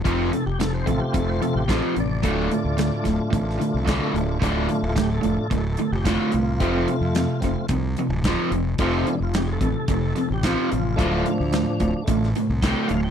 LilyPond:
<<
  \new Staff \with { instrumentName = "Tonewheel organ" } { \time 4/4 \key d \minor \tempo 4 = 110 << { r8 a'16 g'16 a'16 c''16 a'16 g'16 a'16 c''16 a'16 g'16 a'16 c''16 d''8~ | d''4. r2 r8 | r8 d'16 f'16 g'16 <gis' a'>4. g'16 f'8 f'8 | r1 |
r8 d'16 f'16 g'16 <gis' a'>4. g'16 f'8 f'8 | f2 r4 g''8 f''16 g''16 | } \\ { r4. <a c' f'>4. r4 | <a d' f'>1 | <a d' f'>4. <a d' f'>8 r2 | <a c' f'>8 r4 <a c' f'>8 r2 |
<a c' f'>8 r2. r8 | <a d' f'>8 r4. <a d' f'>8 r4. | } >> }
  \new Staff \with { instrumentName = "Overdriven electric guitar" } { \clef bass \time 4/4 \key d \minor <f, c f>8 <f, c>8 <f, c>8 <f, c>8 <f, c>8 <f, c>8 <f, c f>8 <f, c>8 | <d, a, d>8 <d, a,>8 <d, a,>8 <d, a,>8 <d, a,>8 <d, a,>8 <d, a, d>8 <d, a,>8 | <d, a, d>8 <d, a,>8 <d, a,>8 <d, a,>8 <d, a,>8 <d, a,>8 <d, a, d>8 <d, a,>8 | <f, c f>8 <f, c>8 <f, c>8 <f, c>8 <f, c>8 <f, c>8 <f, c f>8 <f, c>8 |
<f, c f>8 <f, c>8 <f, c>8 <f, c>8 <f, c>8 <f, c>8 <f, c f>8 <f, c>8 | <d, a, d>8 <d, a,>8 <d, a,>8 <d, a,>8 <d, a,>8 <d, a,>8 <d, a, d>8 <d, a,>8 | }
  \new Staff \with { instrumentName = "Overdriven electric guitar" } { \clef bass \time 4/4 \key d \minor <f, c f>8 <f, c>8 <f, c>8 <f, c>8 <f, c>8 <f, c>8 <f, c f>8 <f, c>8 | <d, a, d>8 <d, a,>8 <d, a,>8 <d, a,>8 <d, a,>8 <d, a,>8 <d, a, d>8 <d, a,>8 | <d, a, d>8 <d, a,>8 <d, a,>8 <d, a,>8 <d, a,>8 <d, a,>8 <d, a, d>8 <d, a,>8 | <f, c f>8 <f, c>8 <f, c>8 <f, c>8 <f, c>8 <f, c>8 <f, c f>8 <f, c>8 |
<f, c f>8 <f, c>8 <f, c>8 <f, c>8 <f, c>8 <f, c>8 <f, c f>8 <f, c>8 | <d, a, d>8 <d, a,>8 <d, a,>8 <d, a,>8 <d, a,>8 <d, a,>8 <d, a, d>8 <d, a,>8 | }
  \new Staff \with { instrumentName = "Fingered electric bass" } { \clef bass \time 4/4 \key d \minor f,,8 r16 f,,8. a,,16 r16 f,,8 r16 a,,8 r16 a,,8 | d,,8 r16 d,8 r16 d,,16 r16 a,,8 r16 c,8 r16 d,,8 | d,,8 r16 d,,8. f,,16 r16 d,,8 r16 f,,8 r16 c,8 | f,,8 r16 f,8 r16 f,,16 r16 c,8 r16 d,,8 r16 f,,8 |
f,,8 r16 f,,8. a,,16 r16 f,,8 r16 a,,8 r16 a,,8 | d,,8 r16 d,8 r16 d,,16 r16 a,,8 r16 c,8 r16 d,,8 | }
  \new DrumStaff \with { instrumentName = "Drums" } \drummode { \time 4/4 <hh bd>8 hh8 <hh sn>8 <hh bd>8 <hh bd>8 hh8 <hh bd sn>8 hh8 | <hh bd>8 hh8 <hh sn>8 <hh bd sn>8 <hh bd>16 sn16 hh8 <hh bd sn>8 hh8 | <hh bd>8 hh8 <hh bd sn>8 hh8 <hh bd>8 hh8 <hh bd sn>8 hh8 | <hh bd>8 hh8 <hh sn>8 <hh bd sn>8 <hh bd>8 hh8 <hh bd sn>8 hh8 |
<hh bd>8 hh8 <hh sn>8 <hh bd>8 <hh bd>8 hh8 <hh bd sn>8 hh8 | <hh bd>8 hh8 <hh sn>8 <hh bd>8 <hh bd>16 sn16 hh8 <hh bd sn>8 hh8 | }
>>